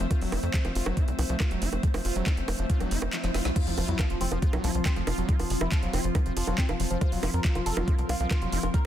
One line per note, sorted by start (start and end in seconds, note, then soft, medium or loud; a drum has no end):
0.00 3.56 F3 medium
0.00 3.57 A3 medium
0.00 3.55 C4 medium
0.00 3.58 C5 medium
0.00 3.56 E5 medium
0.11 0.21 F4 medium
0.11 kick loud
0.11 closed hi-hat medium
0.11 high bongo soft
0.11 riser medium
0.21 0.28 F1 medium
0.21 0.34 F#3 loud
0.21 open hi-hat medium
0.32 0.39 F1 loud
0.32 0.40 F4 loud
0.32 open hi-hat medium
0.32 high bongo medium
0.43 0.50 F2 medium
0.43 closed hi-hat soft
0.54 0.58 F3 medium
0.54 kick loud
0.54 clap loud
0.54 closed hi-hat medium
0.65 0.71 F1 medium
0.65 0.72 F3 medium
0.65 closed hi-hat soft
0.65 high bongo soft
0.75 0.82 F1 loud
0.75 0.86 F4 medium
0.75 open hi-hat loud
0.86 0.93 F1 medium
0.86 0.98 F#3 loud
0.86 high bongo medium
0.97 1.04 F4 loud
0.97 kick loud
0.97 closed hi-hat medium
1.08 1.14 C2 medium
1.08 closed hi-hat soft
1.19 1.25 C2 loud
1.19 1.23 F3 medium
1.19 open hi-hat loud
1.19 high bongo soft
1.29 1.36 C2 medium
1.29 1.37 F3 medium
1.29 closed hi-hat soft
1.40 1.50 F4 medium
1.40 kick loud
1.40 clap loud
1.40 closed hi-hat medium
1.40 high bongo medium
1.51 1.57 F1 medium
1.51 1.63 F#3 loud
1.51 closed hi-hat soft
1.62 1.68 F1 loud
1.62 1.69 F4 loud
1.62 open hi-hat loud
1.73 1.79 F1 medium
1.73 closed hi-hat soft
1.73 high bongo soft
1.83 1.88 F3 medium
1.83 kick loud
1.83 closed hi-hat medium
1.94 2.01 F1 medium
1.94 2.02 F3 medium
1.94 open hi-hat medium
1.94 high bongo medium
2.05 2.11 F1 loud
2.05 2.15 F4 medium
2.05 open hi-hat loud
2.16 2.22 F1 loud
2.16 2.28 F#3 loud
2.16 closed hi-hat soft
2.26 2.34 F4 loud
2.26 kick loud
2.26 clap loud
2.26 closed hi-hat medium
2.26 high bongo soft
2.37 2.44 F1 medium
2.37 closed hi-hat soft
2.48 2.55 F1 medium
2.48 2.53 F3 medium
2.48 open hi-hat loud
2.48 high bongo medium
2.59 2.65 F1 medium
2.59 2.66 F3 medium
2.59 closed hi-hat soft
2.70 2.80 F4 medium
2.70 kick loud
2.70 closed hi-hat medium
2.80 2.87 F1 medium
2.80 2.93 F#3 loud
2.80 closed hi-hat soft
2.80 high bongo soft
2.91 2.98 F1 loud
2.91 2.99 F4 loud
2.91 open hi-hat loud
3.02 3.09 F1 medium
3.02 closed hi-hat soft
3.02 high bongo medium
3.13 3.17 F3 medium
3.13 clap loud
3.13 closed hi-hat medium
3.24 3.30 F1 medium
3.24 3.31 F3 medium
3.24 snare medium
3.24 closed hi-hat soft
3.34 3.41 F1 loud
3.34 3.45 F4 medium
3.34 snare medium
3.34 open hi-hat medium
3.34 high bongo soft
3.45 3.52 C2 medium
3.45 3.50 F#3 loud
3.45 snare medium
3.45 closed hi-hat soft
3.56 8.86 F3 medium
3.56 3.60 F3 medium
3.56 8.86 C4 medium
3.56 3.62 F4 loud
3.56 7.03 F4 medium
3.56 8.86 F4 medium
3.56 kick loud
3.56 closed hi-hat medium
3.56 crash loud
3.56 sub drop medium
3.67 3.73 F1 medium
3.67 3.72 F3 medium
3.67 3.74 F3 medium
3.67 open hi-hat medium
3.73 8.86 F5 medium
3.78 3.84 F1 loud
3.78 3.83 F3 medium
3.78 3.88 F4 medium
3.78 open hi-hat loud
3.78 high bongo soft
3.88 3.95 F2 loud
3.88 4.01 F#3 loud
3.88 3.94 E4 medium
3.88 closed hi-hat soft
3.99 4.05 F3 medium
3.99 4.07 F4 loud
3.99 kick loud
3.99 clap loud
3.99 closed hi-hat medium
3.99 high bongo medium
4.10 4.16 F1 medium
4.10 4.15 F3 medium
4.10 closed hi-hat soft
4.20 4.27 F1 loud
4.20 4.25 F3 medium
4.20 4.26 C4 loud
4.20 8.86 C6 medium
4.20 open hi-hat loud
4.32 4.38 F1 loud
4.32 4.37 F3 medium
4.32 4.39 F3 medium
4.32 closed hi-hat soft
4.32 high bongo soft
4.42 4.48 F3 medium
4.42 4.54 C4 medium
4.42 4.53 F4 medium
4.42 kick loud
4.42 closed hi-hat medium
4.53 4.60 C2 medium
4.53 4.65 F#3 loud
4.53 closed hi-hat soft
4.53 high bongo medium
4.64 4.70 C2 loud
4.64 4.69 F3 medium
4.64 4.71 F4 loud
4.64 open hi-hat loud
4.75 4.81 C2 loud
4.75 4.80 F3 medium
4.75 closed hi-hat soft
4.85 4.90 F3 medium
4.85 4.91 C4 medium
4.85 kick loud
4.85 clap loud
4.85 closed hi-hat medium
4.85 high bongo soft
4.96 5.03 F1 medium
4.96 5.04 F3 medium
4.96 5.02 F3 medium
4.96 5.39 A3 medium
4.96 closed hi-hat soft
5.07 5.14 F1 loud
5.07 5.13 F3 medium
5.07 5.17 F4 medium
5.07 open hi-hat loud
5.07 high bongo medium
5.18 5.24 F1 medium
5.18 5.23 F3 medium
5.18 5.30 F#3 loud
5.18 closed hi-hat soft
5.29 5.36 F4 loud
5.29 5.34 F4 loud
5.29 kick loud
5.29 closed hi-hat medium
5.39 5.46 F1 medium
5.39 5.45 F3 medium
5.39 open hi-hat medium
5.39 high bongo soft
5.50 5.57 F1 medium
5.50 5.55 F3 medium
5.50 5.56 F3 medium
5.50 open hi-hat loud
5.61 5.68 F1 medium
5.61 5.69 F3 medium
5.61 5.67 E4 loud
5.61 high bongo medium
5.72 5.77 F3 medium
5.72 5.82 F4 medium
5.72 kick loud
5.72 clap loud
5.72 closed hi-hat medium
5.83 5.89 F1 medium
5.83 5.88 F3 medium
5.83 5.95 F#3 loud
5.83 closed hi-hat soft
5.93 6.00 F1 loud
5.93 5.99 C4 loud
5.93 6.01 F4 loud
5.93 open hi-hat loud
5.93 high bongo soft
6.04 6.11 F1 loud
6.04 6.10 F3 medium
6.04 closed hi-hat soft
6.15 6.20 F3 medium
6.15 6.21 F3 medium
6.15 kick loud
6.15 closed hi-hat medium
6.15 high bongo medium
6.26 6.32 F1 medium
6.26 6.33 F3 medium
6.26 closed hi-hat soft
6.37 6.43 F1 loud
6.37 6.42 F3 medium
6.37 6.47 F4 medium
6.37 open hi-hat loud
6.47 6.54 F1 loud
6.47 6.53 F3 medium
6.47 6.60 F#3 loud
6.47 closed hi-hat soft
6.47 high bongo soft
6.58 6.64 C4 medium
6.58 6.66 F4 loud
6.58 kick loud
6.58 clap loud
6.58 closed hi-hat medium
6.69 6.75 F1 medium
6.69 6.74 F3 medium
6.69 closed hi-hat soft
6.69 high bongo medium
6.80 6.86 F1 loud
6.80 6.84 F3 medium
6.80 6.85 F3 medium
6.80 open hi-hat loud
6.91 6.97 F1 medium
6.91 6.96 F3 medium
6.91 6.98 F3 medium
6.91 closed hi-hat soft
7.01 7.12 F4 medium
7.01 8.86 A#4 medium
7.01 7.07 C5 loud
7.01 kick loud
7.01 closed hi-hat medium
7.01 high bongo soft
7.12 7.19 F1 medium
7.12 7.24 F#3 loud
7.12 7.18 F4 medium
7.12 open hi-hat medium
7.23 7.29 F1 medium
7.23 7.30 F4 loud
7.23 7.28 F4 medium
7.23 open hi-hat loud
7.23 high bongo medium
7.34 7.40 F2 medium
7.34 7.39 A#4 medium
7.34 closed hi-hat soft
7.44 7.49 F3 medium
7.44 7.50 F4 medium
7.44 kick loud
7.44 clap loud
7.44 closed hi-hat medium
7.55 7.62 F1 medium
7.55 7.63 F3 medium
7.55 7.61 F4 medium
7.55 closed hi-hat soft
7.55 high bongo soft
7.66 7.73 F1 loud
7.66 7.76 F4 medium
7.66 7.72 A4 loud
7.66 open hi-hat loud
7.77 7.83 F1 loud
7.77 7.89 F#3 loud
7.77 7.82 F4 medium
7.77 closed hi-hat soft
7.77 high bongo medium
7.88 7.93 F4 medium
7.88 7.95 F4 loud
7.88 kick loud
7.88 closed hi-hat medium
7.98 8.05 C2 medium
7.98 closed hi-hat soft
8.09 8.16 C2 loud
8.09 8.14 F3 medium
8.09 8.15 F4 medium
8.09 open hi-hat loud
8.09 high bongo soft
8.20 8.27 C2 loud
8.20 8.28 F3 medium
8.20 8.26 F4 medium
8.20 closed hi-hat soft
8.31 8.36 F4 medium
8.31 8.41 F4 medium
8.31 kick loud
8.31 clap loud
8.31 closed hi-hat medium
8.31 high bongo medium
8.42 8.48 F1 medium
8.42 8.54 F#3 loud
8.42 8.47 F4 medium
8.42 closed hi-hat soft
8.52 8.59 F1 loud
8.52 8.60 F4 loud
8.52 8.58 F4 medium
8.52 open hi-hat loud
8.63 8.70 F1 medium
8.63 8.69 F4 medium
8.63 closed hi-hat soft
8.63 high bongo soft
8.74 8.79 F3 medium
8.74 8.80 A#4 loud
8.74 kick loud
8.74 closed hi-hat medium